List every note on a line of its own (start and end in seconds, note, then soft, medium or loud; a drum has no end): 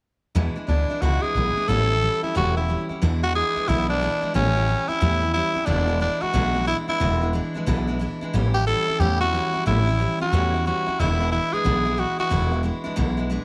0.35 0.56 E2 medium
0.35 0.50 E2 medium
0.35 0.56 B2 medium
0.35 0.57 E3 medium
0.35 0.56 G#3 loud
0.35 0.55 D4 medium
0.35 0.54 E4 loud
0.56 0.66 E3 soft
0.56 0.67 G#3 soft
0.56 0.68 D4 medium
0.56 0.68 E4 medium
0.56 muted upright bass stroke medium
0.67 0.86 D2 medium
0.67 0.89 E3 medium
0.67 0.90 G#3 medium
0.67 1.03 D4 medium
0.67 0.89 D4 medium
0.67 0.88 E4 medium
0.89 1.01 E3 soft
0.89 1.02 G#3 soft
0.89 1.02 D4 medium
0.89 1.02 E4 soft
1.02 1.20 C#2 medium
1.02 1.23 E2 medium
1.02 1.23 B2 medium
1.02 1.24 E3 medium
1.02 1.23 G#3 medium
1.02 1.22 D4 medium
1.02 1.21 E4 medium
1.02 1.23 F#4 medium
1.22 1.34 E3 soft
1.22 1.35 G#3 soft
1.22 1.36 D4 soft
1.22 1.35 E4 medium
1.22 1.70 G#4 medium
1.22 muted upright bass stroke medium
1.35 1.53 B1 medium
1.35 1.57 E3 medium
1.35 1.57 G#3 medium
1.35 1.56 D4 medium
1.35 1.55 E4 medium
1.56 1.68 E3 soft
1.56 1.69 G#3 soft
1.56 1.69 D4 soft
1.56 1.69 E4 medium
1.68 2.07 A1 medium
1.68 1.90 A2 medium
1.68 1.90 E3 medium
1.68 1.90 G3 medium
1.68 1.90 C#4 medium
1.68 1.88 E4 medium
1.68 2.23 A4 loud
1.90 2.01 G3 soft
1.90 2.02 C#4 soft
1.90 2.02 E4 medium
2.02 2.23 E3 medium
2.02 2.23 G3 medium
2.02 2.22 C#4 medium
2.02 2.21 E4 medium
2.22 2.34 G3 soft
2.22 2.35 C#4 soft
2.22 2.35 E4 medium
2.22 muted upright bass stroke medium
2.35 2.74 E1 medium
2.35 2.56 A2 medium
2.35 2.56 E3 medium
2.35 2.57 G3 medium
2.35 2.56 C#4 medium
2.35 2.54 E4 medium
2.35 2.56 F#4 loud
2.56 2.68 G3 soft
2.56 2.68 C#4 soft
2.56 2.68 E4 soft
2.56 2.88 E4 medium
2.68 2.90 E3 medium
2.68 2.90 G3 medium
2.68 2.89 C#4 medium
2.68 2.88 E4 medium
2.89 3.02 G3 soft
2.89 3.02 C#4 soft
2.89 3.02 E4 medium
2.89 muted upright bass stroke medium
3.02 3.23 E2 medium
3.02 3.40 E2 medium
3.02 3.23 B2 medium
3.02 3.23 E3 medium
3.02 3.23 G#3 medium
3.02 3.22 D4 loud
3.02 3.21 E4 loud
3.22 3.34 G#3 soft
3.22 3.34 D4 soft
3.22 3.35 E4 medium
3.22 3.35 F#4 loud
3.34 3.56 E3 medium
3.34 3.56 G#3 medium
3.34 3.55 D4 medium
3.34 3.54 E4 medium
3.34 3.70 G#4 loud
3.55 3.68 E3 soft
3.55 3.68 G#3 soft
3.55 3.68 D4 medium
3.55 3.68 E4 soft
3.55 muted upright bass stroke medium
3.67 4.06 B1 medium
3.67 3.89 E2 medium
3.67 3.89 B2 medium
3.67 3.90 E3 medium
3.67 3.89 G#3 medium
3.67 3.88 D4 medium
3.67 3.89 E4 loud
3.67 3.87 E4 medium
3.88 4.00 E3 soft
3.88 4.01 G#3 soft
3.88 4.01 D4 soft
3.88 4.32 D4 medium
3.88 4.01 E4 medium
4.01 4.22 E3 medium
4.01 4.22 G#3 medium
4.01 4.21 D4 medium
4.01 4.20 E4 medium
4.21 4.33 E3 soft
4.21 4.35 G#3 soft
4.21 4.35 D4 soft
4.21 4.34 E4 medium
4.21 muted upright bass stroke medium
4.34 4.73 A1 medium
4.34 4.56 A2 medium
4.34 4.56 E3 medium
4.34 4.56 G3 medium
4.34 4.55 C#4 medium
4.34 4.90 C#4 loud
4.34 4.54 E4 medium
4.55 4.67 G3 soft
4.55 4.68 E4 medium
4.68 4.89 E3 medium
4.68 4.89 G3 medium
4.68 4.88 C#4 medium
4.68 4.87 E4 medium
4.88 5.00 G3 soft
4.88 5.01 C#4 medium
4.88 5.01 E4 medium
4.88 5.33 E4 medium
4.88 muted upright bass stroke medium
5.01 5.39 E2 medium
5.01 5.22 A2 medium
5.01 5.22 E3 medium
5.01 5.22 G3 medium
5.01 5.21 C#4 medium
5.01 5.20 E4 loud
5.21 5.33 G3 soft
5.21 5.34 C#4 soft
5.21 5.34 E4 medium
5.34 5.55 E3 medium
5.34 5.56 G3 medium
5.34 5.55 C#4 medium
5.34 5.67 E4 medium
5.34 5.53 E4 medium
5.55 5.66 G3 soft
5.55 5.67 C#4 medium
5.55 5.66 E4 medium
5.55 muted upright bass stroke medium
5.66 6.05 E1 medium
5.66 5.88 E2 medium
5.66 5.88 B2 medium
5.66 5.88 E3 medium
5.66 5.88 G#3 medium
5.66 6.00 D4 medium
5.66 5.87 D4 medium
5.66 5.86 E4 medium
5.87 5.98 E3 soft
5.87 5.99 G#3 soft
5.87 6.00 D4 medium
5.87 6.00 E4 medium
6.00 6.21 E3 medium
6.00 6.21 G#3 medium
6.00 6.20 D4 medium
6.00 6.23 D4 medium
6.00 6.19 E4 medium
6.21 6.32 E3 soft
6.21 6.33 G#3 soft
6.21 6.33 D4 medium
6.21 6.33 E4 medium
6.21 6.67 F#4 medium
6.21 muted upright bass stroke medium
6.33 6.72 B1 medium
6.33 6.55 E2 medium
6.33 6.55 B2 medium
6.33 6.55 E3 medium
6.33 6.55 G#3 medium
6.33 6.54 D4 medium
6.33 6.53 E4 medium
6.54 6.64 E3 soft
6.54 6.65 G#3 soft
6.54 6.66 D4 medium
6.54 6.67 E4 medium
6.66 6.88 E3 medium
6.66 6.88 G#3 medium
6.66 6.87 D4 medium
6.66 6.77 E4 medium
6.66 6.86 E4 medium
6.88 6.99 E3 soft
6.88 7.00 G#3 soft
6.88 7.00 D4 soft
6.88 7.00 E4 soft
6.88 7.31 E4 medium
6.88 muted upright bass stroke medium
7.00 7.38 E1 medium
7.00 7.21 E2 medium
7.00 7.21 B2 medium
7.00 7.22 E3 medium
7.00 7.22 G#3 medium
7.00 7.21 D4 medium
7.00 7.20 E4 medium
7.21 7.32 E3 soft
7.21 7.33 G#3 soft
7.21 7.34 D4 soft
7.21 7.34 E4 medium
7.33 7.54 E3 medium
7.33 7.55 G#3 medium
7.33 7.54 D4 medium
7.33 7.53 E4 medium
7.54 7.66 E3 soft
7.54 7.67 G#3 medium
7.54 7.67 D4 medium
7.54 7.67 E4 medium
7.54 muted upright bass stroke medium
7.66 8.05 B1 medium
7.66 7.88 E2 medium
7.66 7.88 B2 medium
7.66 7.88 E3 loud
7.66 7.88 G#3 loud
7.66 7.87 D4 loud
7.66 7.86 E4 loud
7.87 7.98 E3 soft
7.87 8.00 G#3 medium
7.87 8.00 D4 medium
7.87 8.00 E4 medium
7.99 8.21 E3 medium
7.99 8.21 G#3 medium
7.99 8.21 D4 medium
7.99 8.20 E4 medium
8.21 8.33 E3 soft
8.21 8.34 G#3 soft
8.21 8.34 D4 medium
8.21 8.33 E4 medium
8.21 muted upright bass stroke medium
8.33 8.72 A1 medium
8.33 8.54 A2 medium
8.33 8.55 E3 loud
8.33 8.55 G3 loud
8.33 8.55 C#4 medium
8.33 8.53 E4 loud
8.54 8.66 G3 soft
8.54 8.67 E4 medium
8.54 8.66 G4 loud
8.66 8.87 E3 medium
8.66 8.88 G3 medium
8.66 8.88 C#4 medium
8.66 8.86 E4 medium
8.66 9.01 A4 loud
8.88 9.00 G3 soft
8.88 9.00 C#4 soft
8.88 9.00 E4 medium
8.88 muted upright bass stroke medium
8.99 9.37 E2 medium
8.99 9.21 A2 medium
8.99 9.21 E3 medium
8.99 9.21 G3 medium
8.99 9.21 C#4 medium
8.99 9.20 E4 medium
8.99 9.20 G4 loud
9.21 9.33 G3 soft
9.21 9.33 C#4 medium
9.21 9.33 E4 medium
9.21 9.63 F#4 loud
9.33 9.54 E3 medium
9.33 9.54 G3 medium
9.33 9.53 C#4 medium
9.33 9.52 E4 medium
9.53 9.65 G3 soft
9.53 9.66 C#4 medium
9.53 9.66 E4 medium
9.53 muted upright bass stroke medium
9.66 10.04 A1 medium
9.66 9.87 A2 medium
9.66 9.87 E3 medium
9.66 9.87 G3 medium
9.66 9.87 C#4 medium
9.66 9.85 E4 medium
9.66 10.17 E4 medium
9.87 9.99 G3 soft
9.87 10.00 C#4 medium
9.87 9.99 E4 medium
9.99 10.20 E3 medium
9.99 10.21 G3 medium
9.99 10.20 C#4 medium
9.99 10.19 E4 medium
10.20 10.32 G3 soft
10.20 10.33 C#4 medium
10.20 10.32 E4 medium
10.20 10.63 F#4 medium
10.20 muted upright bass stroke medium
10.32 10.70 E2 medium
10.32 10.53 A2 medium
10.32 10.54 E3 medium
10.32 10.54 G3 medium
10.32 10.54 C#4 medium
10.32 10.52 E4 medium
10.54 10.66 G3 soft
10.54 10.66 C#4 medium
10.54 10.66 E4 medium
10.66 10.87 E3 medium
10.66 10.87 G3 medium
10.66 10.86 C#4 medium
10.66 10.85 E4 medium
10.66 11.01 F#4 medium
10.86 11.00 G3 soft
10.86 10.99 C#4 soft
10.86 10.99 E4 medium
10.86 muted upright bass stroke medium
10.99 11.37 E1 loud
10.99 11.20 E2 medium
10.99 11.20 B2 medium
10.99 11.20 E3 medium
10.99 11.21 G#3 medium
10.99 11.20 D4 medium
10.99 11.32 E4 medium
10.99 11.19 E4 loud
11.20 11.30 E3 soft
11.20 11.31 G#3 soft
11.20 11.32 D4 medium
11.20 11.32 E4 medium
11.31 11.53 E3 medium
11.31 11.53 G#3 medium
11.31 11.52 D4 medium
11.31 11.54 E4 medium
11.31 11.52 E4 medium
11.53 11.64 E3 soft
11.53 11.64 G#3 medium
11.53 11.65 D4 medium
11.53 11.65 E4 soft
11.53 12.01 G#4 loud
11.53 muted upright bass stroke medium
11.64 12.03 B1 medium
11.64 11.86 E2 medium
11.64 11.86 B2 medium
11.64 11.86 E3 medium
11.64 11.86 G#3 medium
11.64 11.85 D4 medium
11.64 11.84 E4 medium
11.85 11.96 E3 soft
11.85 11.97 G#3 soft
11.85 11.98 D4 medium
11.85 11.98 E4 medium
11.97 12.19 E3 medium
11.97 12.19 G#3 medium
11.97 12.18 D4 medium
11.97 12.17 E4 medium
11.97 12.19 F#4 medium
12.18 12.30 E3 soft
12.18 12.30 G#3 soft
12.18 12.30 D4 soft
12.18 12.31 E4 medium
12.18 12.62 F#4 medium
12.18 muted upright bass stroke medium
12.30 12.69 E1 medium
12.30 12.52 E2 medium
12.30 12.52 B2 medium
12.30 12.52 E3 medium
12.30 12.52 G#3 medium
12.30 12.51 D4 medium
12.30 12.50 E4 medium
12.51 12.62 E3 soft
12.51 12.63 G#3 soft
12.51 12.63 D4 soft
12.51 12.64 E4 medium
12.63 12.85 E3 medium
12.63 12.84 G#3 medium
12.63 12.83 D4 medium
12.63 12.83 E4 medium
12.84 12.95 E3 medium
12.84 12.96 G#3 medium
12.84 12.96 D4 medium
12.84 12.96 E4 medium
12.84 muted upright bass stroke medium
12.96 13.36 B1 medium
12.96 13.18 E2 medium
12.96 13.18 B2 medium
12.96 13.18 E3 medium
12.96 13.17 G#3 loud
12.96 13.16 D4 loud
12.96 13.16 E4 medium
13.17 13.28 E3 medium
13.17 13.29 G#3 medium
13.17 13.30 D4 medium
13.17 13.30 E4 medium
13.30 13.45 E3 medium
13.30 13.45 G#3 medium
13.30 13.45 D4 medium
13.30 13.45 E4 medium